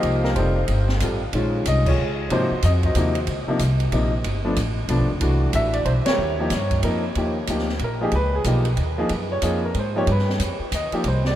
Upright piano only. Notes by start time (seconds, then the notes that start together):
Already playing: F3 A#3 D#4 G4 C5 D#5
0.24 A#4
0.36 G3 C4 D#4 F4 A4 C5
1.01 G3 C4 F4 A4
1.34 D#3 G#3 C#4 F4
1.68 D#5
1.87 F4 G#4 C#5
2.31 C3 F3 A#3 D#4 F#4 C5
2.64 D#5
2.85 F#4 C5 D#5
2.96 C3 F3 A#3 D#4
3.48 C3 F3 A#3 D#4
3.92 C3 F3 A#3 D#4
4.45 F3 A3 B3 D4
4.89 F3 A3 B3 D4
5.20 E3 A3 D4 F#4
5.55 E5
5.73 D5
5.85 C5
6.06 G4 A#4 C#5
6.39 F3 A#3 D#4 G4
6.83 F3 A#3 D#4 A#4
7.17 F3 A#3 D#4 G4
7.49 F3 A#3 D#4 G4
7.84 A#4
8.01 F3 A#3 D#4 G4 G#4
8.15 B4
8.35 G#4
8.45 F3 A#3 D#4 G4
8.98 F3 A#3 D#4 G#4
9.32 C#5
9.43 F3 A#3 D#4 G#4
9.65 A#4
9.79 C5
9.96 F3 A#3 D#4 G4 C#5
10.12 B4
10.75 D#5
10.93 F3 A#3 D#4 G4
11.08 C5
11.27 D5